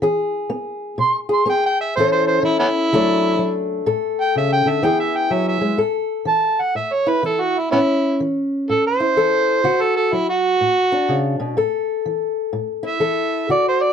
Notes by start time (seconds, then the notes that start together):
Already playing: E4
0.02 E3 G#4
0.50 B3
0.98 B2 C6
1.29 G#4
1.33 C6
1.46 B3 G#4
1.50 G5
1.66 G5
1.81 E5
1.96 A2 E3 C#4 E4 C5
2.00 A4
2.12 C5
2.27 C5
2.43 E3 E4
2.60 B3 C#4 E4
2.93 D3 F#3 A3 D4
3.39 F#3
3.86 A2 A4
4.21 G5
4.36 C#3 E5
4.52 G5
4.66 D3 E5
4.83 E3 B3 E4 G#4 G5
5.00 E5
5.16 G5
5.30 F#3 E5
5.48 E5
5.61 G#3
5.77 A2 A4
6.25 E3 A5
6.61 F#5
6.75 A2 E5
6.93 C#5
7.07 E4 B4
7.23 E3 E4 A4
7.41 F#4
7.59 E4
7.72 A2 B3 C#4 E4
8.20 E3
8.69 A2 A4
8.87 C5
9.00 E4
9.17 E3 A4
9.64 D3 F#4
9.81 A4
9.96 A4
10.13 F#3 E4
10.30 F#4
10.61 A2
10.92 D4
11.09 C#3
11.40 B2
11.57 A2 A4
12.06 E3
12.53 A2
12.83 E4
12.87 E5
13.00 E3 A4
13.49 D3 F#4 D5
13.68 C5
13.82 D5